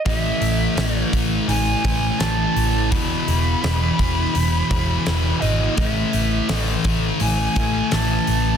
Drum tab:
HH |oooooooo|oooooooo|oooooooo|
SD |--o---o-|--o---o-|--o---o-|
BD |o--o-o--|o--o-o--|o--o-o--|